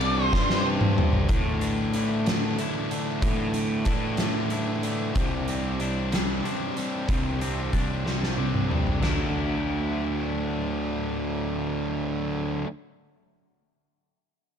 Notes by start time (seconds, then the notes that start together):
Already playing: C2 D5
0.01 C3 G3 C4 D4, ride
0.26 C5
0.33 G2 C3 G3 C4 D4, kick, snare
0.50 snare
0.64 C3 G3 C4 D4
0.81 mid tom
0.98 mid tom
1.13 floor tom
1.29 A2 D3 E3 A3 D4, kick, closed hi-hat
1.61 E3 A3 D4, closed hi-hat
1.93 D3 E3 A3 D4 E4, closed hi-hat
2.25 D3 E3 A3 D4, snare, closed hi-hat
2.57 D3 E3 A3 D4 E4, closed hi-hat
2.90 D3 E3 A3 D4, closed hi-hat
3.22 A2 D3 E3 A3 D4, kick, closed hi-hat
3.54 E3 A3 D4, closed hi-hat
3.85 A2 D3 E3 A3 D4 E4, kick, closed hi-hat
4.17 D3 A3 D4, snare, closed hi-hat
4.21 E3
4.50 D3 E3 A3 D4 E4, closed hi-hat
4.83 D3 E3 A3 D4, closed hi-hat
5.15 C2 C3 G3 C4 D4, kick, closed hi-hat
5.47 G3 C4 D4, closed hi-hat
5.80 C3 G3 C4 D4, closed hi-hat
6.12 G3 C4 D4, snare, closed hi-hat
6.43 C3 G3 C4 D4, closed hi-hat
6.76 G3 C4 D4, closed hi-hat
7.08 C2 C3 G3 C4 D4, kick, closed hi-hat
7.40 G3 C4 D4, closed hi-hat
7.73 C2 C3 G3 C4 D4, kick, closed hi-hat
8.04 G3 C4 D4, snare
8.23 snare
8.37 C3 G3 C4 D4, high tom
8.54 mid tom
8.68 G3 C4 D4, mid tom
8.87 floor tom
8.99 D2 D3 F#3 A3 D4, floor tom, crash
9.03 E4, snare